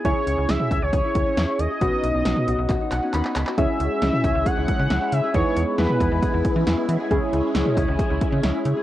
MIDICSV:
0, 0, Header, 1, 7, 480
1, 0, Start_track
1, 0, Key_signature, 4, "minor"
1, 0, Tempo, 441176
1, 54, Time_signature, 4, 2, 24, 8
1, 9606, End_track
2, 0, Start_track
2, 0, Title_t, "Analog synth lead"
2, 0, Program_c, 0, 81
2, 55, Note_on_c, 0, 73, 107
2, 535, Note_on_c, 0, 76, 109
2, 551, Note_off_c, 0, 73, 0
2, 894, Note_on_c, 0, 73, 105
2, 910, Note_off_c, 0, 76, 0
2, 1734, Note_on_c, 0, 75, 112
2, 1750, Note_off_c, 0, 73, 0
2, 3654, Note_off_c, 0, 75, 0
2, 3894, Note_on_c, 0, 76, 119
2, 4854, Note_on_c, 0, 78, 115
2, 4870, Note_off_c, 0, 76, 0
2, 5574, Note_on_c, 0, 76, 102
2, 5590, Note_off_c, 0, 78, 0
2, 5807, Note_off_c, 0, 76, 0
2, 5813, Note_on_c, 0, 73, 105
2, 6260, Note_off_c, 0, 73, 0
2, 6295, Note_on_c, 0, 71, 85
2, 7211, Note_off_c, 0, 71, 0
2, 9606, End_track
3, 0, Start_track
3, 0, Title_t, "Harp"
3, 0, Program_c, 1, 46
3, 0, Note_on_c, 1, 64, 71
3, 0, Note_on_c, 1, 68, 70
3, 54, Note_on_c, 1, 61, 91
3, 529, Note_off_c, 1, 64, 0
3, 533, Note_on_c, 1, 64, 78
3, 769, Note_off_c, 1, 68, 0
3, 773, Note_on_c, 1, 68, 74
3, 1009, Note_off_c, 1, 68, 0
3, 1014, Note_on_c, 1, 68, 86
3, 1129, Note_off_c, 1, 64, 0
3, 1133, Note_on_c, 1, 64, 73
3, 1369, Note_off_c, 1, 61, 0
3, 1373, Note_on_c, 1, 61, 74
3, 1490, Note_off_c, 1, 64, 0
3, 1494, Note_on_c, 1, 64, 84
3, 1609, Note_off_c, 1, 64, 0
3, 1614, Note_on_c, 1, 64, 72
3, 1849, Note_off_c, 1, 68, 0
3, 1854, Note_on_c, 1, 68, 71
3, 1969, Note_off_c, 1, 61, 0
3, 1973, Note_on_c, 1, 61, 89
3, 2453, Note_on_c, 1, 63, 77
3, 2518, Note_off_c, 1, 64, 0
3, 2694, Note_on_c, 1, 66, 73
3, 2930, Note_off_c, 1, 66, 0
3, 2934, Note_on_c, 1, 66, 82
3, 3050, Note_off_c, 1, 63, 0
3, 3054, Note_on_c, 1, 63, 68
3, 3289, Note_off_c, 1, 61, 0
3, 3294, Note_on_c, 1, 61, 72
3, 3409, Note_off_c, 1, 63, 0
3, 3414, Note_on_c, 1, 63, 80
3, 3529, Note_off_c, 1, 63, 0
3, 3534, Note_on_c, 1, 63, 72
3, 3769, Note_off_c, 1, 66, 0
3, 3773, Note_on_c, 1, 66, 71
3, 3889, Note_off_c, 1, 61, 0
3, 3894, Note_on_c, 1, 61, 88
3, 4328, Note_off_c, 1, 68, 0
3, 4374, Note_on_c, 1, 64, 76
3, 4440, Note_off_c, 1, 63, 0
3, 4614, Note_on_c, 1, 68, 75
3, 4850, Note_off_c, 1, 68, 0
3, 4855, Note_on_c, 1, 68, 82
3, 4970, Note_off_c, 1, 64, 0
3, 4975, Note_on_c, 1, 64, 75
3, 5210, Note_off_c, 1, 61, 0
3, 5214, Note_on_c, 1, 61, 73
3, 5330, Note_off_c, 1, 64, 0
3, 5335, Note_on_c, 1, 64, 85
3, 5450, Note_off_c, 1, 64, 0
3, 5454, Note_on_c, 1, 64, 71
3, 5690, Note_off_c, 1, 68, 0
3, 5694, Note_on_c, 1, 68, 73
3, 5815, Note_on_c, 1, 63, 89
3, 5880, Note_off_c, 1, 64, 0
3, 6295, Note_on_c, 1, 64, 81
3, 6360, Note_off_c, 1, 63, 0
3, 6425, Note_off_c, 1, 66, 0
3, 6530, Note_off_c, 1, 68, 0
3, 6535, Note_on_c, 1, 68, 80
3, 6770, Note_off_c, 1, 68, 0
3, 6774, Note_on_c, 1, 68, 86
3, 6890, Note_off_c, 1, 64, 0
3, 6895, Note_on_c, 1, 64, 72
3, 7130, Note_off_c, 1, 61, 0
3, 7134, Note_on_c, 1, 61, 73
3, 7250, Note_off_c, 1, 64, 0
3, 7254, Note_on_c, 1, 64, 86
3, 7370, Note_off_c, 1, 64, 0
3, 7375, Note_on_c, 1, 64, 72
3, 7610, Note_off_c, 1, 68, 0
3, 7614, Note_on_c, 1, 68, 76
3, 7730, Note_off_c, 1, 61, 0
3, 7734, Note_on_c, 1, 61, 93
3, 8209, Note_off_c, 1, 64, 0
3, 8214, Note_on_c, 1, 64, 78
3, 8450, Note_off_c, 1, 68, 0
3, 8454, Note_on_c, 1, 68, 81
3, 8690, Note_off_c, 1, 68, 0
3, 8694, Note_on_c, 1, 68, 87
3, 8810, Note_off_c, 1, 64, 0
3, 8814, Note_on_c, 1, 64, 75
3, 9050, Note_off_c, 1, 61, 0
3, 9054, Note_on_c, 1, 61, 74
3, 9170, Note_off_c, 1, 64, 0
3, 9174, Note_on_c, 1, 64, 85
3, 9290, Note_off_c, 1, 64, 0
3, 9294, Note_on_c, 1, 64, 74
3, 9530, Note_off_c, 1, 68, 0
3, 9535, Note_on_c, 1, 68, 76
3, 9606, Note_off_c, 1, 61, 0
3, 9606, Note_off_c, 1, 64, 0
3, 9606, Note_off_c, 1, 68, 0
3, 9606, End_track
4, 0, Start_track
4, 0, Title_t, "Synth keys"
4, 0, Program_c, 2, 88
4, 54, Note_on_c, 2, 61, 65
4, 54, Note_on_c, 2, 64, 59
4, 54, Note_on_c, 2, 68, 72
4, 1935, Note_off_c, 2, 61, 0
4, 1935, Note_off_c, 2, 64, 0
4, 1935, Note_off_c, 2, 68, 0
4, 1974, Note_on_c, 2, 59, 65
4, 1974, Note_on_c, 2, 63, 58
4, 1974, Note_on_c, 2, 66, 69
4, 3173, Note_on_c, 2, 78, 69
4, 3397, Note_off_c, 2, 78, 0
4, 3414, Note_on_c, 2, 83, 67
4, 3856, Note_off_c, 2, 59, 0
4, 3856, Note_off_c, 2, 63, 0
4, 3856, Note_off_c, 2, 66, 0
4, 3860, Note_off_c, 2, 83, 0
4, 3894, Note_on_c, 2, 61, 65
4, 3894, Note_on_c, 2, 64, 60
4, 3894, Note_on_c, 2, 68, 70
4, 5776, Note_off_c, 2, 61, 0
4, 5776, Note_off_c, 2, 64, 0
4, 5776, Note_off_c, 2, 68, 0
4, 5813, Note_on_c, 2, 68, 72
4, 5814, Note_on_c, 2, 59, 64
4, 5814, Note_on_c, 2, 64, 59
4, 7695, Note_off_c, 2, 59, 0
4, 7695, Note_off_c, 2, 64, 0
4, 7695, Note_off_c, 2, 68, 0
4, 7734, Note_on_c, 2, 61, 79
4, 7734, Note_on_c, 2, 64, 75
4, 7734, Note_on_c, 2, 68, 89
4, 9606, Note_off_c, 2, 61, 0
4, 9606, Note_off_c, 2, 64, 0
4, 9606, Note_off_c, 2, 68, 0
4, 9606, End_track
5, 0, Start_track
5, 0, Title_t, "String machine"
5, 0, Program_c, 3, 50
5, 3893, Note_on_c, 3, 61, 70
5, 3893, Note_on_c, 3, 64, 86
5, 3894, Note_on_c, 3, 56, 80
5, 5795, Note_off_c, 3, 56, 0
5, 5795, Note_off_c, 3, 61, 0
5, 5813, Note_on_c, 3, 56, 81
5, 5814, Note_on_c, 3, 59, 71
5, 7715, Note_off_c, 3, 59, 0
5, 7735, Note_on_c, 3, 61, 73
5, 9606, Note_off_c, 3, 56, 0
5, 9606, Note_off_c, 3, 61, 0
5, 9606, Note_off_c, 3, 64, 0
5, 9606, End_track
6, 0, Start_track
6, 0, Title_t, "FM bass"
6, 0, Program_c, 4, 39
6, 53, Note_on_c, 4, 37, 104
6, 146, Note_off_c, 4, 37, 0
6, 294, Note_on_c, 4, 37, 92
6, 386, Note_off_c, 4, 37, 0
6, 413, Note_on_c, 4, 37, 98
6, 505, Note_off_c, 4, 37, 0
6, 534, Note_on_c, 4, 37, 101
6, 626, Note_off_c, 4, 37, 0
6, 773, Note_on_c, 4, 37, 100
6, 866, Note_off_c, 4, 37, 0
6, 893, Note_on_c, 4, 37, 99
6, 986, Note_off_c, 4, 37, 0
6, 1012, Note_on_c, 4, 37, 101
6, 1105, Note_off_c, 4, 37, 0
6, 1255, Note_on_c, 4, 37, 93
6, 1347, Note_off_c, 4, 37, 0
6, 1493, Note_on_c, 4, 40, 94
6, 1586, Note_off_c, 4, 40, 0
6, 1733, Note_on_c, 4, 39, 87
6, 1825, Note_off_c, 4, 39, 0
6, 1974, Note_on_c, 4, 35, 104
6, 2066, Note_off_c, 4, 35, 0
6, 2214, Note_on_c, 4, 35, 96
6, 2306, Note_off_c, 4, 35, 0
6, 2335, Note_on_c, 4, 35, 88
6, 2426, Note_off_c, 4, 35, 0
6, 2454, Note_on_c, 4, 35, 99
6, 2546, Note_off_c, 4, 35, 0
6, 2694, Note_on_c, 4, 35, 104
6, 2786, Note_off_c, 4, 35, 0
6, 2814, Note_on_c, 4, 35, 100
6, 2906, Note_off_c, 4, 35, 0
6, 2932, Note_on_c, 4, 35, 99
6, 3025, Note_off_c, 4, 35, 0
6, 3174, Note_on_c, 4, 35, 102
6, 3266, Note_off_c, 4, 35, 0
6, 3413, Note_on_c, 4, 39, 99
6, 3506, Note_off_c, 4, 39, 0
6, 3654, Note_on_c, 4, 37, 81
6, 3746, Note_off_c, 4, 37, 0
6, 3894, Note_on_c, 4, 37, 106
6, 3986, Note_off_c, 4, 37, 0
6, 4135, Note_on_c, 4, 37, 97
6, 4227, Note_off_c, 4, 37, 0
6, 4374, Note_on_c, 4, 37, 104
6, 4466, Note_off_c, 4, 37, 0
6, 4613, Note_on_c, 4, 37, 98
6, 4706, Note_off_c, 4, 37, 0
6, 4734, Note_on_c, 4, 37, 101
6, 4826, Note_off_c, 4, 37, 0
6, 4974, Note_on_c, 4, 37, 96
6, 5066, Note_off_c, 4, 37, 0
6, 5214, Note_on_c, 4, 49, 99
6, 5306, Note_off_c, 4, 49, 0
6, 5334, Note_on_c, 4, 37, 115
6, 5426, Note_off_c, 4, 37, 0
6, 5574, Note_on_c, 4, 49, 102
6, 5666, Note_off_c, 4, 49, 0
6, 5814, Note_on_c, 4, 40, 107
6, 5906, Note_off_c, 4, 40, 0
6, 6054, Note_on_c, 4, 40, 97
6, 6146, Note_off_c, 4, 40, 0
6, 6294, Note_on_c, 4, 40, 103
6, 6386, Note_off_c, 4, 40, 0
6, 6533, Note_on_c, 4, 40, 100
6, 6626, Note_off_c, 4, 40, 0
6, 6654, Note_on_c, 4, 40, 100
6, 6746, Note_off_c, 4, 40, 0
6, 6894, Note_on_c, 4, 40, 99
6, 6986, Note_off_c, 4, 40, 0
6, 7135, Note_on_c, 4, 52, 95
6, 7227, Note_off_c, 4, 52, 0
6, 7254, Note_on_c, 4, 40, 100
6, 7346, Note_off_c, 4, 40, 0
6, 7494, Note_on_c, 4, 52, 99
6, 7586, Note_off_c, 4, 52, 0
6, 7734, Note_on_c, 4, 37, 110
6, 7826, Note_off_c, 4, 37, 0
6, 7974, Note_on_c, 4, 37, 110
6, 8066, Note_off_c, 4, 37, 0
6, 8214, Note_on_c, 4, 37, 101
6, 8306, Note_off_c, 4, 37, 0
6, 8453, Note_on_c, 4, 37, 102
6, 8546, Note_off_c, 4, 37, 0
6, 8574, Note_on_c, 4, 37, 102
6, 8666, Note_off_c, 4, 37, 0
6, 8814, Note_on_c, 4, 37, 94
6, 8906, Note_off_c, 4, 37, 0
6, 9054, Note_on_c, 4, 49, 98
6, 9146, Note_off_c, 4, 49, 0
6, 9174, Note_on_c, 4, 37, 103
6, 9266, Note_off_c, 4, 37, 0
6, 9414, Note_on_c, 4, 49, 101
6, 9506, Note_off_c, 4, 49, 0
6, 9606, End_track
7, 0, Start_track
7, 0, Title_t, "Drums"
7, 53, Note_on_c, 9, 42, 67
7, 54, Note_on_c, 9, 36, 107
7, 162, Note_off_c, 9, 42, 0
7, 163, Note_off_c, 9, 36, 0
7, 295, Note_on_c, 9, 42, 68
7, 404, Note_off_c, 9, 42, 0
7, 532, Note_on_c, 9, 38, 112
7, 534, Note_on_c, 9, 42, 72
7, 641, Note_off_c, 9, 38, 0
7, 643, Note_off_c, 9, 42, 0
7, 652, Note_on_c, 9, 45, 93
7, 761, Note_off_c, 9, 45, 0
7, 773, Note_on_c, 9, 36, 88
7, 777, Note_on_c, 9, 42, 63
7, 882, Note_off_c, 9, 36, 0
7, 886, Note_off_c, 9, 42, 0
7, 1012, Note_on_c, 9, 36, 95
7, 1015, Note_on_c, 9, 42, 73
7, 1121, Note_off_c, 9, 36, 0
7, 1124, Note_off_c, 9, 42, 0
7, 1254, Note_on_c, 9, 42, 76
7, 1255, Note_on_c, 9, 36, 104
7, 1363, Note_off_c, 9, 42, 0
7, 1364, Note_off_c, 9, 36, 0
7, 1495, Note_on_c, 9, 38, 104
7, 1495, Note_on_c, 9, 42, 72
7, 1603, Note_off_c, 9, 42, 0
7, 1604, Note_off_c, 9, 38, 0
7, 1734, Note_on_c, 9, 42, 67
7, 1842, Note_off_c, 9, 42, 0
7, 1974, Note_on_c, 9, 36, 109
7, 1974, Note_on_c, 9, 42, 68
7, 2083, Note_off_c, 9, 36, 0
7, 2083, Note_off_c, 9, 42, 0
7, 2217, Note_on_c, 9, 42, 67
7, 2325, Note_off_c, 9, 42, 0
7, 2453, Note_on_c, 9, 38, 111
7, 2455, Note_on_c, 9, 42, 76
7, 2562, Note_off_c, 9, 38, 0
7, 2564, Note_off_c, 9, 42, 0
7, 2574, Note_on_c, 9, 45, 92
7, 2682, Note_off_c, 9, 45, 0
7, 2698, Note_on_c, 9, 42, 65
7, 2807, Note_off_c, 9, 42, 0
7, 2932, Note_on_c, 9, 36, 94
7, 2934, Note_on_c, 9, 39, 54
7, 2935, Note_on_c, 9, 42, 74
7, 3041, Note_off_c, 9, 36, 0
7, 3043, Note_off_c, 9, 39, 0
7, 3044, Note_off_c, 9, 42, 0
7, 3174, Note_on_c, 9, 42, 75
7, 3175, Note_on_c, 9, 39, 69
7, 3283, Note_off_c, 9, 39, 0
7, 3283, Note_off_c, 9, 42, 0
7, 3414, Note_on_c, 9, 39, 72
7, 3415, Note_on_c, 9, 42, 72
7, 3523, Note_off_c, 9, 39, 0
7, 3523, Note_off_c, 9, 42, 0
7, 3535, Note_on_c, 9, 39, 72
7, 3643, Note_off_c, 9, 39, 0
7, 3653, Note_on_c, 9, 42, 69
7, 3654, Note_on_c, 9, 39, 93
7, 3762, Note_off_c, 9, 42, 0
7, 3763, Note_off_c, 9, 39, 0
7, 3774, Note_on_c, 9, 39, 84
7, 3883, Note_off_c, 9, 39, 0
7, 3894, Note_on_c, 9, 36, 110
7, 3894, Note_on_c, 9, 42, 67
7, 4003, Note_off_c, 9, 36, 0
7, 4003, Note_off_c, 9, 42, 0
7, 4136, Note_on_c, 9, 42, 68
7, 4245, Note_off_c, 9, 42, 0
7, 4373, Note_on_c, 9, 38, 113
7, 4375, Note_on_c, 9, 42, 77
7, 4482, Note_off_c, 9, 38, 0
7, 4483, Note_off_c, 9, 42, 0
7, 4493, Note_on_c, 9, 45, 96
7, 4602, Note_off_c, 9, 45, 0
7, 4613, Note_on_c, 9, 36, 89
7, 4618, Note_on_c, 9, 42, 65
7, 4722, Note_off_c, 9, 36, 0
7, 4726, Note_off_c, 9, 42, 0
7, 4852, Note_on_c, 9, 36, 91
7, 4855, Note_on_c, 9, 42, 75
7, 4961, Note_off_c, 9, 36, 0
7, 4964, Note_off_c, 9, 42, 0
7, 5094, Note_on_c, 9, 42, 76
7, 5095, Note_on_c, 9, 36, 106
7, 5203, Note_off_c, 9, 42, 0
7, 5204, Note_off_c, 9, 36, 0
7, 5334, Note_on_c, 9, 38, 107
7, 5334, Note_on_c, 9, 42, 73
7, 5443, Note_off_c, 9, 38, 0
7, 5443, Note_off_c, 9, 42, 0
7, 5573, Note_on_c, 9, 42, 68
7, 5682, Note_off_c, 9, 42, 0
7, 5814, Note_on_c, 9, 36, 111
7, 5814, Note_on_c, 9, 42, 67
7, 5922, Note_off_c, 9, 42, 0
7, 5923, Note_off_c, 9, 36, 0
7, 6055, Note_on_c, 9, 42, 73
7, 6164, Note_off_c, 9, 42, 0
7, 6291, Note_on_c, 9, 38, 114
7, 6293, Note_on_c, 9, 42, 73
7, 6400, Note_off_c, 9, 38, 0
7, 6402, Note_off_c, 9, 42, 0
7, 6412, Note_on_c, 9, 45, 100
7, 6521, Note_off_c, 9, 45, 0
7, 6533, Note_on_c, 9, 36, 90
7, 6537, Note_on_c, 9, 42, 70
7, 6642, Note_off_c, 9, 36, 0
7, 6646, Note_off_c, 9, 42, 0
7, 6772, Note_on_c, 9, 36, 98
7, 6774, Note_on_c, 9, 42, 76
7, 6881, Note_off_c, 9, 36, 0
7, 6883, Note_off_c, 9, 42, 0
7, 7014, Note_on_c, 9, 42, 76
7, 7015, Note_on_c, 9, 36, 105
7, 7123, Note_off_c, 9, 42, 0
7, 7124, Note_off_c, 9, 36, 0
7, 7255, Note_on_c, 9, 42, 75
7, 7256, Note_on_c, 9, 38, 111
7, 7364, Note_off_c, 9, 38, 0
7, 7364, Note_off_c, 9, 42, 0
7, 7494, Note_on_c, 9, 42, 67
7, 7603, Note_off_c, 9, 42, 0
7, 7734, Note_on_c, 9, 36, 111
7, 7734, Note_on_c, 9, 42, 67
7, 7843, Note_off_c, 9, 36, 0
7, 7843, Note_off_c, 9, 42, 0
7, 7976, Note_on_c, 9, 42, 72
7, 8085, Note_off_c, 9, 42, 0
7, 8213, Note_on_c, 9, 38, 116
7, 8214, Note_on_c, 9, 42, 79
7, 8321, Note_off_c, 9, 38, 0
7, 8323, Note_off_c, 9, 42, 0
7, 8333, Note_on_c, 9, 45, 99
7, 8441, Note_off_c, 9, 45, 0
7, 8453, Note_on_c, 9, 36, 88
7, 8458, Note_on_c, 9, 42, 69
7, 8562, Note_off_c, 9, 36, 0
7, 8566, Note_off_c, 9, 42, 0
7, 8692, Note_on_c, 9, 36, 98
7, 8696, Note_on_c, 9, 42, 74
7, 8801, Note_off_c, 9, 36, 0
7, 8804, Note_off_c, 9, 42, 0
7, 8934, Note_on_c, 9, 42, 78
7, 8935, Note_on_c, 9, 36, 104
7, 9043, Note_off_c, 9, 42, 0
7, 9044, Note_off_c, 9, 36, 0
7, 9175, Note_on_c, 9, 38, 105
7, 9175, Note_on_c, 9, 42, 75
7, 9283, Note_off_c, 9, 42, 0
7, 9284, Note_off_c, 9, 38, 0
7, 9413, Note_on_c, 9, 42, 68
7, 9522, Note_off_c, 9, 42, 0
7, 9606, End_track
0, 0, End_of_file